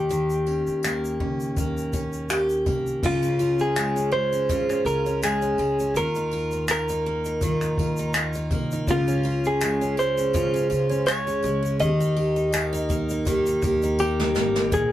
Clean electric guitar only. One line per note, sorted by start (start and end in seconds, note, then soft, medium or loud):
0.00 2.26 G4 medium
3.06 3.63 F4 medium
3.61 4.12 G#4 medium
4.13 4.86 C5 loud
4.86 5.20 A#4 medium
5.24 5.97 G#4 medium
5.97 6.65 A#4 medium
6.71 8.12 A#4 medium
8.91 9.47 F4 medium
9.47 9.95 G#4 medium
9.99 11.06 C5 medium
11.07 11.76 C#5 medium
11.80 13.95 D#5 medium
14.00 14.73 G4 medium
14.74 14.92 G#4 medium